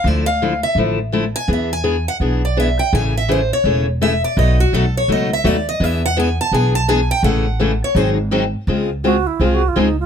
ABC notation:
X:1
M:4/4
L:1/16
Q:"Swing" 1/4=167
K:A
V:1 name="Steel-string acoustic guitar"
d2 =f4 e2 z6 g2 | e2 g4 f2 z2 d2 e2 =g2 | g2 e2 =c2 ^c4 z2 e2 d2 | ^d2 F2 A2 c2 d2 e2 =d2 ^d2 |
e2 f2 g2 a2 g2 a2 g2 =g2 | f6 c2 ^B2 z6 | [K:Db] z16 |]
V:2 name="Alto flute"
z16 | z16 | z16 | z16 |
z16 | z16 | [K:Db] z4 G2 _F2 (3=F2 G2 F2 E2 F2 |]
V:3 name="Steel-string acoustic guitar"
[D,=F,A,E]2 z2 [D,F,A,E] z3 [D,F,A,E]2 z2 [D,F,A,E] z3 | [E,B,DG]2 z2 [E,B,DG] z3 [E,B,DG]2 z2 [E,B,DG] z3 | [C,E,A,CG]2 z2 [C,E,A,CG] z3 [C,E,A,CG]2 z2 [C,E,A,CG] z3 | [B,,F,A,^DF]2 z2 [B,,F,A,DF] z3 [B,,F,A,DF]2 z2 [B,,F,A,DF] z3 |
[E,B,DG]2 z2 [E,B,DG] z3 [E,B,DG]2 z2 [E,B,DG] z3 | [C,E,A,CG]2 z2 [C,E,A,CG] z3 [^D,F,^B,^DG]2 z2 [D,F,B,DG] z3 | [K:Db] [D,A,CFA]2 z2 [D,A,CFA] z3 [D,A,CFA]2 z2 [D,A,CFA] z3 |]
V:4 name="Upright bass" clef=bass
D,,8 A,,,8 | E,,8 B,,,8 | A,,,8 E,,,8 | B,,,4 B,,,4 C,,4 ^D,,4 |
E,,8 B,,,8 | A,,,8 G,,,8 | [K:Db] D,,8 C,,4 D,,4 |]